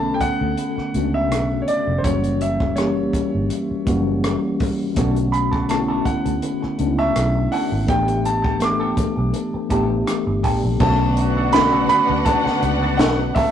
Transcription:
Already playing: fingered electric bass B1, tine electric piano D3 A3 B3 C#4 F#4 A4, grand piano A5
0.14 grand piano G5
0.20 grand piano F#5, muted fingered electric bass stroke, kick, closed hi-hat
0.41 fingered electric bass D2
0.57 closed hi-hat
0.78 muted fingered electric bass stroke, cross-stick
0.93 fingered electric bass C#2, tine electric piano C#3 A3 B3 C#4 F#4, closed hi-hat
1.00 tine electric piano D4
1.14 grand piano E5
1.30 fingered electric bass B1, cross-stick, closed hi-hat
1.62 grand piano C#5
1.68 grand piano D5, closed hi-hat
1.87 fingered electric bass F1
1.98 tine electric piano E3, grand piano C5
2.03 fingered electric bass F#1, tine electric piano G3 A#3 C#4 F#4, grand piano C#5, kick, closed hi-hat
2.24 closed hi-hat
2.41 grand piano E5, closed hi-hat
2.60 kick
2.75 tine electric piano E3 G3 A#3 C#4 G4, grand piano C#5, cross-stick, closed hi-hat
3.13 muted fingered electric bass stroke, kick, closed hi-hat
3.35 fingered electric bass G1
3.50 closed hi-hat
3.71 muted fingered electric bass stroke
3.86 fingered electric bass F#1, tine electric piano E3 G3 A#3 C#4 F#4, kick, closed hi-hat
4.24 cross-stick, closed hi-hat
4.60 kick, open hi-hat
4.95 fingered electric bass B1, tine electric piano D3 A3 B3 C#4 F#4, clean electric guitar D4 F#4 A4, kick, closed hi-hat
5.16 muted clean electric guitar stroke, closed hi-hat
5.32 grand piano B5, muted clean electric guitar stroke, closed hi-hat
5.52 clean electric guitar D4 F#4 A4, kick
5.68 tine electric piano D3 A3 B3 C#4 E4, grand piano A5, muted clean electric guitar stroke, cross-stick, closed hi-hat
5.78 tine electric piano F#4
5.88 clean electric guitar D4 F#4 A4
6.05 grand piano F#5, muted clean electric guitar stroke, muted fingered electric bass stroke, kick, closed hi-hat
6.25 fingered electric bass D2, muted clean electric guitar stroke, closed hi-hat
6.42 muted clean electric guitar stroke, closed hi-hat
6.62 muted clean electric guitar stroke, muted fingered electric bass stroke, cross-stick
6.78 fingered electric bass C#2, tine electric piano A3 B3 C#4 D4, closed hi-hat
6.88 tine electric piano E4
6.98 clean electric guitar D4 F#4 A4, grand piano E5
7.16 fingered electric bass B1, muted clean electric guitar stroke, cross-stick, closed hi-hat
7.36 muted clean electric guitar stroke
7.52 clean electric guitar D4 F#4 A4, grand piano F#5, open hi-hat
7.72 fingered electric bass G#1, muted clean electric guitar stroke
7.86 fingered electric bass A1, tine electric piano E3 A3 B3 D4 G4, clean electric guitar D4 G4 A4, grand piano G5, kick, closed hi-hat
8.08 muted clean electric guitar stroke, closed hi-hat
8.24 grand piano A5, muted clean electric guitar stroke, closed hi-hat
8.43 clean electric guitar D4 G4 A4, kick
8.59 tine electric piano E3 A3 B3 D4 A4, muted clean electric guitar stroke, cross-stick, closed hi-hat
8.64 grand piano D6
8.80 clean electric guitar D4 G4 A4
8.97 muted clean electric guitar stroke, muted fingered electric bass stroke, kick, closed hi-hat
9.16 fingered electric bass B1, muted clean electric guitar stroke
9.33 muted clean electric guitar stroke, closed hi-hat
9.54 muted fingered electric bass stroke, muted clean electric guitar stroke
9.69 fingered electric bass A1, tine electric piano E3 A3 B3 D4 G4, clean electric guitar D4 G4 A4, kick, closed hi-hat
9.90 muted clean electric guitar stroke
10.07 muted clean electric guitar stroke, cross-stick, closed hi-hat
10.27 fingered electric bass G1, muted clean electric guitar stroke
10.43 fingered electric bass A1, clean electric guitar D4 G4 A4, kick, open hi-hat
10.63 fingered electric bass A#1, muted clean electric guitar stroke
10.79 fingered electric bass B1, tine electric piano D3 A3 B3 C#4 F#4, horn section F#3 B3 D4 F#4, clean electric guitar D4 F#4 A4, string section D4 B4 F#5, grand piano A5, kick, crash
11.01 muted clean electric guitar stroke
11.17 muted clean electric guitar stroke, closed hi-hat
11.37 clean electric guitar D4 F#4 A4
11.51 tine electric piano C#3 A3 B3 C#4 F#4, grand piano B5, muted clean electric guitar stroke, snare, closed hi-hat
11.57 tine electric piano D3
11.73 clean electric guitar D4 F#4 A4
11.89 grand piano B5, muted fingered electric bass stroke, closed hi-hat
12.09 fingered electric bass D2, muted clean electric guitar stroke
12.25 grand piano A5, muted clean electric guitar stroke, kick, closed hi-hat
12.46 muted clean electric guitar stroke, muted fingered electric bass stroke, snare
12.62 fingered electric bass C#2, closed hi-hat
12.83 clean electric guitar D4 F#4 A4
12.97 fingered electric bass B1, grand piano F#5, snare, closed hi-hat
13.19 muted clean electric guitar stroke
13.35 clean electric guitar D4 F#4 A4, grand piano E5, kick, open hi-hat

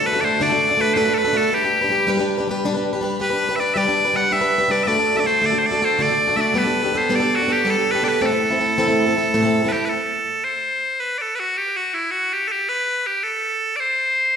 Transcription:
Already playing: steel-string acoustic guitar D4 F#4 A4
0.06 bagpipes B4
0.13 steel-string acoustic guitar D4 F#4 A4
0.21 steel-string acoustic guitar A3 D4, bagpipes C5 D5
0.25 steel-string acoustic guitar F#4 A4
0.40 steel-string acoustic guitar D3 A3 D4 F#4 A4, bagpipes D5
0.50 steel-string acoustic guitar D4 F#4 A4
0.69 steel-string acoustic guitar D4 F#4 A4
0.77 steel-string acoustic guitar A3 D4 F#4 A4, bagpipes B4
0.94 steel-string acoustic guitar D3 A3 D4 F#4 A4, bagpipes B4 C5
1.05 steel-string acoustic guitar D4 F#4 A4
1.14 bagpipes A4 B4
1.25 steel-string acoustic guitar D4 F#4 A4
1.33 steel-string acoustic guitar A3 D4 F#4 A4, bagpipes A4
1.52 steel-string acoustic guitar G3 D4 G4 B4, bagpipes G4
1.62 steel-string acoustic guitar D4 G4 B4
1.81 steel-string acoustic guitar D4 G4 B4
1.89 steel-string acoustic guitar G3 D4 G4 B4
2.07 steel-string acoustic guitar G3 D4 G4 B4
2.17 steel-string acoustic guitar D4 G4 B4
2.38 steel-string acoustic guitar D4 G4 B4
2.48 steel-string acoustic guitar G3 D4 G4 B4
2.65 steel-string acoustic guitar G3 D4 G4 B4
2.74 steel-string acoustic guitar D4 G4 B4
2.93 steel-string acoustic guitar D4 G4 B4
3.01 steel-string acoustic guitar G3 D4 G4 B4
3.19 steel-string acoustic guitar G3 D4 G4 B4, bagpipes B4
3.30 steel-string acoustic guitar D4 G4 B4
3.49 steel-string acoustic guitar D4 G4 B4
3.56 steel-string acoustic guitar G3 D4, bagpipes E5
3.60 steel-string acoustic guitar G4 B4, bagpipes D5
3.74 steel-string acoustic guitar G3 D4 G4 B4, bagpipes D5 E5
3.86 steel-string acoustic guitar D4 G4 B4
4.05 steel-string acoustic guitar D4 G4 B4
4.14 steel-string acoustic guitar G3 D4 G4 B4, bagpipes F#5
4.31 steel-string acoustic guitar G3 D4 G4 B4, bagpipes E5
4.41 steel-string acoustic guitar D4 G4 B4
4.58 steel-string acoustic guitar D4 G4 B4
4.68 steel-string acoustic guitar G3 D4 G4 B4, bagpipes D5
4.83 steel-string acoustic guitar D3 A3, bagpipes E5
4.87 steel-string acoustic guitar D4 F#4 A4, bagpipes D5
4.96 steel-string acoustic guitar D4 A4
5.16 steel-string acoustic guitar D4 F#4 A4, bagpipes E5
5.20 bagpipes D5
5.24 steel-string acoustic guitar A3 D4 F#4 A4, bagpipes C5
5.41 steel-string acoustic guitar D3 A3 D4 F#4 A4
5.46 bagpipes D5
5.51 steel-string acoustic guitar D4 F#4 A4
5.58 bagpipes C5
5.66 bagpipes D5
5.71 steel-string acoustic guitar D4 F#4 A4
5.79 steel-string acoustic guitar A3 D4 F#4 A4
5.85 bagpipes C5
5.99 steel-string acoustic guitar D3 A3 D4 F#4 A4, bagpipes D5
6.08 steel-string acoustic guitar D4 F#4 A4
6.28 steel-string acoustic guitar D4 F#4 A4
6.36 steel-string acoustic guitar A3 D4 F#4 A4, bagpipes E5
6.41 bagpipes D5
6.54 steel-string acoustic guitar G3 B3 D4 G4 A4, bagpipes B4
6.64 steel-string acoustic guitar D4 G4 A4
6.83 steel-string acoustic guitar D4 G4 A4
6.92 steel-string acoustic guitar B3 D4 G4 A4
6.98 bagpipes C5
7.09 steel-string acoustic guitar G3 B3 D4 G4 A4
7.15 bagpipes D5
7.20 steel-string acoustic guitar D4 G4 A4
7.35 bagpipes F#4, steel-string acoustic guitar A4
7.41 steel-string acoustic guitar D4 G4
7.48 steel-string acoustic guitar B3 D4 G4 A4
7.52 bagpipes G4
7.65 steel-string acoustic guitar G3 B3 D4 G4 A4
7.71 bagpipes A4
7.75 steel-string acoustic guitar D4 G4 A4
7.91 steel-string acoustic guitar A4, bagpipes B4
7.95 steel-string acoustic guitar D4 G4
8.02 steel-string acoustic guitar B3 D4 G4 A4, bagpipes D5
8.08 bagpipes B4
8.20 steel-string acoustic guitar A2 E3 A3 C4 E4 A4, bagpipes D5
8.26 bagpipes A4
8.31 steel-string acoustic guitar A3 E4 A4
8.50 steel-string acoustic guitar A3 C4 E4 A4
8.58 steel-string acoustic guitar A3 C4 E4 A4
8.77 steel-string acoustic guitar A2 E3 A3 C4 E4 A4
8.87 steel-string acoustic guitar A3 C4 E4 A4
9.06 steel-string acoustic guitar A3 C4 E4 A4
9.15 steel-string acoustic guitar A3 C4 E4 A4
9.34 steel-string acoustic guitar A2 E3 A3 C4 E4 A4
9.43 steel-string acoustic guitar A3 C4 E4 A4
9.62 steel-string acoustic guitar A3 C4 E4 A4
9.68 steel-string acoustic guitar A3, bagpipes G4 B4
9.73 steel-string acoustic guitar C4 E4 A4
9.85 bagpipes A4 B4
10.44 bagpipes C5
11.00 bagpipes B4
11.18 bagpipes A4 D5
11.35 bagpipes B4
11.40 bagpipes F#4
11.57 bagpipes G4
11.76 bagpipes F#4
11.94 bagpipes E4
12.11 bagpipes F#4
12.33 bagpipes G4
12.48 bagpipes A4
12.52 bagpipes G4
12.69 bagpipes B4
13.07 bagpipes G4
13.24 bagpipes A4
13.76 bagpipes C5 D5

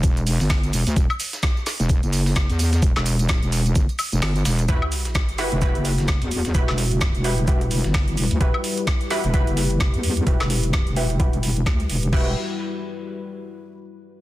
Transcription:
0.03 wobble bass E1, kick, closed hi-hat, tambourine, shaker
0.17 closed hi-hat, tambourine
0.27 open hi-hat, tambourine, shaker
0.40 wobble bass G1, snare, tambourine
0.50 kick, snare, closed hi-hat, open hi-hat, tambourine
0.63 closed hi-hat, tambourine
0.73 wobble bass E1, open hi-hat, tambourine, shaker
0.87 wobble bass D2, closed hi-hat, tambourine
0.96 wobble bass E1, kick, closed hi-hat, tambourine, shaker
1.10 tambourine, high woodblock
1.20 open hi-hat, tambourine, shaker
1.33 snare, closed hi-hat, tambourine
1.43 kick, snare, closed hi-hat, tambourine, shaker
1.57 tambourine
1.66 snare, open hi-hat, tambourine, shaker
1.80 wobble bass E1, closed hi-hat, tambourine
1.89 kick, closed hi-hat, tambourine, shaker
2.03 wobble bass F#1, closed hi-hat, tambourine
2.13 open hi-hat, tambourine, shaker
2.26 snare, tambourine
2.36 kick, snare, closed hi-hat, shaker
2.50 wobble bass E2, closed hi-hat, tambourine
2.59 open hi-hat, tambourine, shaker
2.73 snare, closed hi-hat, tambourine
2.82 wobble bass E1, kick, closed hi-hat, tambourine, shaker
2.96 wobble bass E1, snare, closed hi-hat, tambourine, high woodblock
3.06 open hi-hat, tambourine, shaker
3.19 closed hi-hat, tambourine
3.29 kick, snare, closed hi-hat, tambourine, shaker
3.43 wobble bass E1, closed hi-hat, tambourine
3.52 open hi-hat, tambourine, shaker
3.66 closed hi-hat, tambourine
3.75 wobble bass G1, kick, closed hi-hat, tambourine, shaker
3.89 closed hi-hat, tambourine
3.99 open hi-hat, tambourine, high woodblock, shaker
4.12 wobble bass E1, closed hi-hat, tambourine
4.22 wobble bass G1, snare, closed hi-hat, open hi-hat, tambourine
4.36 closed hi-hat, tambourine
4.45 wobble bass E1, snare, open hi-hat, tambourine, shaker
4.59 closed hi-hat, tambourine
4.69 wobble bass E1, analog synth pad G3 E4 F#4 B4, synth stab E4 F#4 G4 B4, kick, closed hi-hat, sub drop, shaker
4.82 high woodblock
4.92 open hi-hat, shaker
5.05 snare, closed hi-hat
5.15 kick, snare, closed hi-hat, shaker
5.29 closed hi-hat
5.38 synth stab E4 F#4 G4 B4, snare, open hi-hat, shaker
5.52 wobble bass E1, closed hi-hat
5.62 synth stab E4 F#4 G4 B4, kick, closed hi-hat, shaker
5.75 wobble bass F#1, closed hi-hat
5.85 open hi-hat, shaker
5.98 snare, closed hi-hat
6.08 kick, snare, closed hi-hat, shaker
6.22 wobble bass E2, closed hi-hat
6.31 open hi-hat, shaker
6.45 snare, closed hi-hat
6.55 wobble bass E1, synth stab E4 F#4 G4 B4, kick, closed hi-hat, shaker
6.68 wobble bass E1, snare, closed hi-hat, high woodblock
6.78 open hi-hat, shaker
6.91 closed hi-hat
7.01 kick, snare, closed hi-hat, shaker
7.15 wobble bass E1, closed hi-hat
7.24 synth stab E4 F#4 G4 B4, open hi-hat, shaker
7.38 closed hi-hat
7.48 wobble bass E1, synth stab E4 F#4 G4 B4, kick, closed hi-hat, shaker
7.61 closed hi-hat
7.71 open hi-hat, shaker
7.84 wobble bass G1, snare, closed hi-hat
7.94 kick, snare, closed hi-hat, open hi-hat
8.08 closed hi-hat
8.17 wobble bass E1, open hi-hat, shaker
8.31 wobble bass D2, closed hi-hat
8.41 wobble bass E1, synth stab E4 F#4 G4 B4, analog synth pad G4, kick, closed hi-hat
8.54 high woodblock
8.64 open hi-hat
8.77 closed hi-hat
8.87 kick, snare, closed hi-hat
9.01 closed hi-hat
9.10 synth stab E4 F#4 G4 B4, snare, open hi-hat
9.24 wobble bass E1, closed hi-hat
9.34 synth stab E4 F#4 G4 B4, kick, closed hi-hat
9.47 wobble bass F#1, closed hi-hat
9.57 open hi-hat
9.71 closed hi-hat
9.80 kick, snare, closed hi-hat
9.94 wobble bass E2, closed hi-hat
10.03 open hi-hat
10.17 closed hi-hat
10.27 wobble bass E1, synth stab E4 F#4 G4 B4, kick, closed hi-hat
10.40 wobble bass E1, snare, closed hi-hat, high woodblock
10.50 open hi-hat
10.64 closed hi-hat
10.73 kick, snare, closed hi-hat
10.87 wobble bass E1, closed hi-hat
10.96 synth stab E4 F#4 G4 B4, open hi-hat
11.10 closed hi-hat
11.20 wobble bass E1, synth stab E4 F#4 G4 B4, kick, closed hi-hat
11.33 closed hi-hat
11.43 open hi-hat
11.57 closed hi-hat
11.66 wobble bass D2, kick, snare, closed hi-hat
11.80 closed hi-hat
11.89 wobble bass E1, open hi-hat
12.03 closed hi-hat
12.13 wobble bass E1, analog synth pad G3 E4 F#4 B4, synth stab E4 F#4 G4 B4, kick, crash

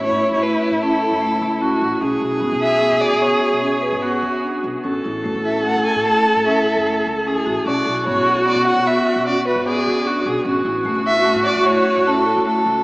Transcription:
Already playing: viola E4
0.04 marimba A3, violin C#5
0.12 upright bass A2
0.24 marimba E4
0.32 upright bass A2, violin C#5
0.42 marimba A3, violin B4
0.63 marimba E4
0.71 upright bass A2
0.83 marimba C#4, violin A4
1.03 marimba A4
1.11 upright bass F#1
1.22 marimba A3
1.42 upright bass C#2, marimba E4
1.61 marimba C#4, viola F#4
1.81 upright bass A1, marimba F#4
2.01 upright bass B1, marimba C#4, viola G#4
2.21 upright bass B1, marimba F#4
2.40 upright bass G#1, marimba B3
2.52 upright bass B1
2.61 marimba F#4, violin E5
2.81 marimba B3
2.92 upright bass B2
3.01 marimba F#4, violin D5
3.13 upright bass B2
3.21 marimba B3, violin C#5
3.42 marimba F#4
3.53 upright bass B2
3.61 marimba C#4
3.82 marimba B4
3.92 upright bass G#1
4.02 marimba B3, viola F#4
4.23 upright bass D2, marimba F#4
4.43 marimba D4
4.64 upright bass B1, marimba F#4
4.84 upright bass A1, marimba C#4, viola A4
5.04 upright bass A1, marimba E4
5.24 upright bass F#1, marimba A3
5.35 upright bass A1
5.45 marimba E4, violin E5
5.65 marimba A3, violin F#5
5.75 upright bass A2
5.85 marimba E4, violin G#5
5.96 upright bass A2
6.05 marimba A3, violin A5
6.27 marimba E4
6.36 upright bass A2
6.46 marimba C#4, violin E5
6.65 marimba A4
6.77 upright bass F#1
6.86 marimba A3
7.06 upright bass C#2, marimba E4
7.26 marimba C#4, viola G#4
7.46 upright bass A1, marimba F#4
7.66 upright bass B1, marimba C#4, viola F#4, violin D5
7.86 upright bass B1, marimba F#4
8.06 upright bass G#1, marimba B3, violin C#5
8.16 upright bass B1
8.26 marimba F#4
8.46 marimba B3, violin D5
8.55 upright bass B2
8.66 marimba F#4, violin F#5
8.76 upright bass B2
8.86 marimba B3, violin E5
9.07 marimba F#4
9.16 upright bass B2
9.27 marimba C#4, violin D5
9.46 marimba B4, violin B4
9.55 upright bass G#1
9.66 marimba B3, viola G#4, violin D5
9.86 upright bass D2, marimba F#4
10.05 marimba D4, viola F#4
10.25 upright bass B1, marimba F#4, viola G#4
10.45 upright bass A1, marimba C#4, viola F#4
10.65 upright bass A1, marimba E4
10.85 upright bass F#1, marimba A3
10.95 upright bass A1
11.06 marimba E4, violin E5
11.26 marimba A3
11.35 upright bass A2
11.45 marimba E4, violin D5
11.56 upright bass A2
11.66 marimba A3, violin C#5
11.86 marimba E4
11.96 upright bass A2
12.07 marimba C#4, violin A4
12.26 marimba A4
12.36 upright bass F#1
12.46 marimba A3, violin A4
12.66 upright bass C#2, marimba E4

